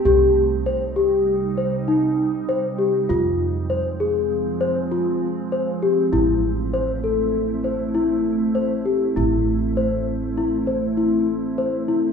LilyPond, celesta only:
\new Staff \with { instrumentName = "Celesta" } { \time 5/4 \key c \lydian \tempo 4 = 99 g'4 c''8 g'4 c''8 ees'4 c''8 g'8 | f'4 c''8 aes'4 c''8 f'4 c''8 g'8 | e'4 c''8 a'4 c''8 e'4 c''8 g'8 | \key a \minor e'4 c''4 e'8 c''8 e'4 c''8 e'8 | }